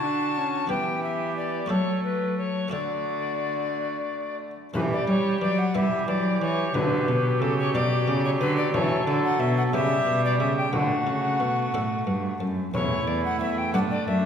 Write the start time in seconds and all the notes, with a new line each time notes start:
Already playing: D3 D4 F#4 D5 A5
0.04 D4
0.37 C#4
0.67 E3 B3 G4 B4 G5
1.03 E5
1.37 D5
1.66 F#3 A3 F#4 A4 C#5
1.71 F#3
2.04 B4
2.38 C#5
2.68 D3 A3 F#4 A4 D5
2.73 F#4
4.74 E3 G3 G4 B4, frame drum
4.93 D5
5.08 G3 C#5
5.41 E3 F#3 D5
5.59 F#5
5.74 E3 G3 B3 E4 G4 E5, frame drum
6.08 E3 F#3 D5
6.42 E3 C#5
6.74 D3 F#3 B4, frame drum
7.08 B2
7.41 C#3 A4
7.59 C#5
7.74 B2 A3 D5 F#5, frame drum
8.07 C#3
8.25 C#5
8.40 D3 B4
8.57 D5
8.73 E3 A4 C#5, frame drum
9.06 D3 D5
9.24 F#5
9.40 B2 E5
9.58 F#5
9.72 C#3 G3 B3 E4 G4 E5, frame drum
10.07 B2
10.25 D5
10.39 C#3 E5
10.57 G5
10.72 D3 A3 F#4 F#5, frame drum
11.06 C#3
11.40 B2
11.73 A2 A3 D4 A4, frame drum
12.07 G2
12.40 F#2
12.74 E2 A3 E4 C#5, frame drum
13.07 E2 D5
13.25 F#5
13.40 E2 E5
13.58 G5
13.73 G2 A3 D4 A4 F#5, frame drum
13.91 D5
14.07 F#2 E5